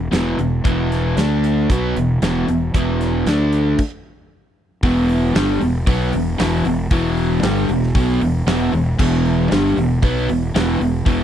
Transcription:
Already playing: fingered electric bass E1
0.12 fingered electric bass E1, overdriven electric guitar E2 B2 E3, snare, closed hi-hat
0.39 fingered electric bass E1, overdriven electric guitar E2 B2, closed hi-hat
0.64 fingered electric bass E1, overdriven electric guitar E2 B2 E3, kick, closed hi-hat
0.92 snare, closed hi-hat
1.17 fingered electric bass D2, overdriven electric guitar D3 A3 D4, snare, closed hi-hat
1.44 closed hi-hat
1.70 fingered electric bass B1, overdriven electric guitar B2 F#3 B3, kick, closed hi-hat
1.95 fingered electric bass E1, overdriven electric guitar E2 B2, closed hi-hat
2.22 fingered electric bass E1, overdriven electric guitar E2 B2 E3, snare, closed hi-hat
2.48 fingered electric bass E1, overdriven electric guitar E2 B2, closed hi-hat
2.74 fingered electric bass E1, overdriven electric guitar E2 B2 E3, kick, closed hi-hat
3.01 snare, closed hi-hat
3.26 fingered electric bass D2, overdriven electric guitar D3 A3 D4, snare, closed hi-hat
3.52 closed hi-hat
3.79 kick, crash
4.83 fingered electric bass E1, overdriven electric guitar E2 B2 E3, kick, open hi-hat
5.09 open hi-hat
5.35 fingered electric bass G1, overdriven electric guitar G2 D3 G3, snare, open hi-hat
5.61 fingered electric bass E1, overdriven electric guitar E2 B2, open hi-hat
5.87 fingered electric bass B1, overdriven electric guitar B2 F#3 B3, kick, open hi-hat
6.13 fingered electric bass E1, overdriven electric guitar E2 B2, open hi-hat
6.38 fingered electric bass E1, overdriven electric guitar E2 B2 E3, snare, open hi-hat
6.65 fingered electric bass E1, overdriven electric guitar E2 B2, open hi-hat
6.91 fingered electric bass E1, overdriven electric guitar E2 B2 E3, kick, open hi-hat
7.17 open hi-hat
7.43 fingered electric bass G1, overdriven electric guitar G2 D3 G3, snare, open hi-hat
7.69 fingered electric bass E1, overdriven electric guitar E2 B2, open hi-hat
7.83 snare
7.95 fingered electric bass B1, overdriven electric guitar B2 F#3 B3, kick, open hi-hat
8.21 fingered electric bass E1, overdriven electric guitar E2 B2, open hi-hat
8.47 fingered electric bass E1, overdriven electric guitar E2 B2 E3, snare, open hi-hat
8.73 fingered electric bass E1, overdriven electric guitar E2 B2, open hi-hat
8.99 fingered electric bass E1, overdriven electric guitar E2 B2 E3, kick, crash
9.25 open hi-hat
9.51 fingered electric bass G1, overdriven electric guitar G2 D3 G3, snare, open hi-hat
9.77 fingered electric bass E1, overdriven electric guitar E2 B2, open hi-hat
10.02 fingered electric bass B1, overdriven electric guitar B2 F#3 B3, kick, open hi-hat
10.29 fingered electric bass E1, overdriven electric guitar E2 B2, open hi-hat
10.55 fingered electric bass E1, overdriven electric guitar E2 B2 E3, snare, open hi-hat
10.80 fingered electric bass E1, overdriven electric guitar E2 B2, open hi-hat
11.06 fingered electric bass E1, overdriven electric guitar E2 B2 E3, kick, open hi-hat

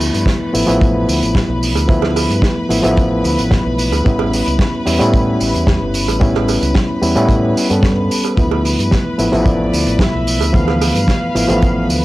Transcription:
Already playing: reed electric piano F3 A3 B3 E4, string section B4 B5
0.00 open hi-hat, tambourine
0.14 fingered electric bass G2, closed hi-hat, tambourine
0.26 kick, snare, closed hi-hat, tambourine
0.53 fingered electric bass A1, reed electric piano F3 A3 B3 E4, open hi-hat, tambourine
0.66 fingered electric bass A1, reed electric piano F3 A3 B3 E4, closed hi-hat, tambourine
0.81 kick, closed hi-hat, tambourine
1.08 fingered electric bass D2, open hi-hat, tambourine
1.22 fingered electric bass A1, closed hi-hat, tambourine
1.35 kick, snare, closed hi-hat, tambourine
1.49 fingered electric bass B1
1.63 open hi-hat, tambourine
1.76 fingered electric bass D2, closed hi-hat, tambourine, cowbell
1.88 fingered electric bass D2, reed electric piano F3 A3 B3 E4, kick, closed hi-hat, tambourine
2.02 snare, cowbell
2.16 open hi-hat, tambourine, cowbell
2.30 fingered electric bass G2, closed hi-hat, tambourine
2.42 kick, snare, closed hi-hat, tambourine
2.69 fingered electric bass A1, reed electric piano F3 A3 B3 E4, open hi-hat, tambourine
2.83 fingered electric bass A1, reed electric piano F3 A3 B3 E4, closed hi-hat, tambourine
2.97 kick, closed hi-hat, tambourine
3.24 fingered electric bass D2, open hi-hat, tambourine
3.38 fingered electric bass A1, closed hi-hat, tambourine
3.51 kick, snare, closed hi-hat, tambourine
3.65 fingered electric bass B1
3.78 open hi-hat, tambourine
3.92 fingered electric bass D2, closed hi-hat, tambourine, cowbell
4.04 fingered electric bass A1, reed electric piano G3 B3 C#4 E4, kick, closed hi-hat
4.19 cowbell
4.33 open hi-hat, tambourine
4.46 fingered electric bass C#2, closed hi-hat, tambourine
4.59 kick, snare, closed hi-hat, tambourine
4.86 fingered electric bass E2, reed electric piano G3 B3 C#4 E4, open hi-hat, tambourine
4.99 fingered electric bass A2, reed electric piano G3 B3 C#4 E4, closed hi-hat, tambourine
5.13 kick, closed hi-hat, tambourine
5.40 fingered electric bass A1, open hi-hat, tambourine
5.54 fingered electric bass E2, closed hi-hat, tambourine
5.67 kick, snare, closed hi-hat, tambourine
5.81 fingered electric bass G1
5.94 open hi-hat, tambourine
6.08 fingered electric bass A1, closed hi-hat, tambourine, cowbell
6.20 fingered electric bass A1, reed electric piano G3 B3 C#4 E4, kick, closed hi-hat, tambourine
6.34 snare, cowbell
6.48 open hi-hat, tambourine, cowbell
6.62 fingered electric bass C#2, closed hi-hat, tambourine
6.74 kick, snare, closed hi-hat, tambourine
7.02 fingered electric bass E2, reed electric piano G3 B3 C#4 E4, open hi-hat, tambourine
7.16 fingered electric bass A2, reed electric piano G3 B3 C#4 E4, closed hi-hat, tambourine
7.29 kick, closed hi-hat, tambourine
7.57 open hi-hat, tambourine
7.70 fingered electric bass G2, reed electric piano G3 B3 C#4 A4, closed hi-hat, tambourine
7.83 kick, snare, closed hi-hat, tambourine
8.11 open hi-hat, tambourine
8.23 closed hi-hat, tambourine, cowbell
8.37 fingered electric bass D2, reed electric piano F3 A3 B3 E4, string section B4 B5, kick, closed hi-hat, tambourine
8.51 cowbell
8.65 open hi-hat, tambourine
8.79 fingered electric bass G2, closed hi-hat, tambourine
8.91 trumpet section B4, kick, snare, closed hi-hat, tambourine
9.18 fingered electric bass A1, reed electric piano F3 A3 B3 E4, open hi-hat, tambourine
9.31 fingered electric bass A1, reed electric piano F3 A3 B3 E4, closed hi-hat, tambourine
9.46 trumpet section D5, kick, closed hi-hat, tambourine
9.73 fingered electric bass D2, open hi-hat, tambourine
9.87 fingered electric bass A1, closed hi-hat, tambourine
9.99 trumpet section E5, kick, snare, closed hi-hat, tambourine
10.14 fingered electric bass B1
10.27 open hi-hat, tambourine
10.41 fingered electric bass D2, closed hi-hat, tambourine, cowbell
10.53 fingered electric bass D2, reed electric piano E3 F3 A3 B3, trumpet section F5, kick, closed hi-hat, tambourine
10.68 snare, cowbell
10.81 open hi-hat, tambourine, cowbell
10.95 fingered electric bass G2, closed hi-hat, tambourine
11.08 kick, snare, closed hi-hat
11.35 fingered electric bass A1, reed electric piano F3 A3 B3 E4, open hi-hat, tambourine
11.48 fingered electric bass A1, reed electric piano E3 F3 A3 B3, closed hi-hat, tambourine
11.62 kick, closed hi-hat, tambourine
11.89 fingered electric bass D2, open hi-hat, tambourine

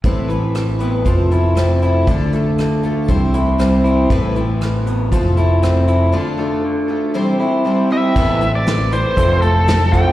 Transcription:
0.04 fingered electric bass A1, twelve-string acoustic guitar A2 E3 A3 C4 E4 B4, kick, closed hi-hat
0.28 clean electric guitar E3, twelve-string acoustic guitar A3 C4 E4 B4, closed hi-hat
0.55 clean electric guitar E3, cross-stick, closed hi-hat
0.79 twelve-string acoustic guitar A3 C4 E4 B4, clean electric guitar B3, closed hi-hat
1.05 fingered electric bass F1, twelve-string acoustic guitar F3 A3 C4 E4 A4, kick, closed hi-hat
1.31 twelve-string acoustic guitar C4 E4 A4, closed hi-hat
1.55 twelve-string acoustic guitar A3 C4 E4 A4, cross-stick, closed hi-hat
1.82 twelve-string acoustic guitar C4 E4 A4, closed hi-hat
2.07 fingered electric bass D2, twelve-string acoustic guitar D3 A3 D4 F4 A4, kick, closed hi-hat
2.32 clean electric guitar A3, twelve-string acoustic guitar D4 F4 A4, closed hi-hat
2.58 clean electric guitar D3, cross-stick, closed hi-hat
2.83 clean electric guitar A3, twelve-string acoustic guitar D4 F4 A4, closed hi-hat
3.08 fingered electric bass C2, twelve-string acoustic guitar C3 E3 G3 C4 E4 C5, kick, closed hi-hat
3.33 twelve-string acoustic guitar G3 C4 E4 C5, closed hi-hat
3.58 twelve-string acoustic guitar G3 C4 E4 C5, cross-stick, closed hi-hat
3.84 twelve-string acoustic guitar G3 C4 E4 C5, closed hi-hat
4.10 fingered electric bass A1, twelve-string acoustic guitar A2 E3 A3 C4 E4 B4, kick, closed hi-hat
4.35 clean electric guitar E3, twelve-string acoustic guitar A3 C4 E4 B4, closed hi-hat
4.61 clean electric guitar E3, cross-stick, closed hi-hat
4.86 clean electric guitar B3, closed hi-hat
5.12 fingered electric bass F1, twelve-string acoustic guitar F3 A3 C4 E4 A4, kick, closed hi-hat
5.37 twelve-string acoustic guitar C4 E4 A4, closed hi-hat
5.62 twelve-string acoustic guitar A3 C4 E4 A4, cross-stick, closed hi-hat
5.88 twelve-string acoustic guitar C4 E4 A4, closed hi-hat
6.12 twelve-string acoustic guitar D3 A3 D4 F4 A4
6.38 clean electric guitar A3, twelve-string acoustic guitar D4 F4 A4
6.64 clean electric guitar D3
6.88 clean electric guitar A3, twelve-string acoustic guitar D4 F4 A4
7.14 twelve-string acoustic guitar C3 E3 G3 C4 E4 C5
7.39 twelve-string acoustic guitar G3 C4 E4 C5
7.65 twelve-string acoustic guitar G3 C4 E4 C5
7.90 twelve-string acoustic guitar G3 C4 E4 C5, lead electric guitar E5
8.15 fingered electric bass A1, twelve-string acoustic guitar A2 E3 A3 C4 A4 B4, clean electric guitar B3, kick, crash
8.41 clean electric guitar A2 E3, twelve-string acoustic guitar A3 C4 A4 B4, closed hi-hat
8.55 lead electric guitar D5
8.66 clean electric guitar A2 E3, twelve-string acoustic guitar A3 C4 A4 B4, snare, closed hi-hat
8.91 clean electric guitar A2 E3, twelve-string acoustic guitar A3 C4 A4 B4, lead electric guitar C5, closed hi-hat
9.16 fingered electric bass F1, twelve-string acoustic guitar F3 A3 C4 E4 A4, kick, closed hi-hat
9.42 clean electric guitar F3 A3, lead electric guitar A4, closed hi-hat
9.66 clean electric guitar F3, twelve-string acoustic guitar A3 C4 E4 A4, snare, closed hi-hat
9.92 clean electric guitar F3 A3 C4, lead electric guitar G5, kick, closed hi-hat

